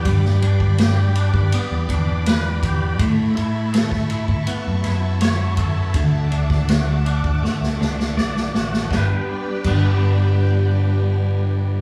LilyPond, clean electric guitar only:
\new Staff \with { instrumentName = "Clean electric guitar" } { \time 4/4 \key g \lydian \tempo 4 = 81 <g b d' g' b'>8 d'8 g'8 d'8 b8 d'8 b'8 g'8 | a8 e'8 a'8 e'8 b8 e'8 cis''8 a'8 | d8 d'8 fis'8 d'8 a8 d'8 d''8 fis'8 | <g b d' g' b'>8 r8 <g b d' g' b'>2. | }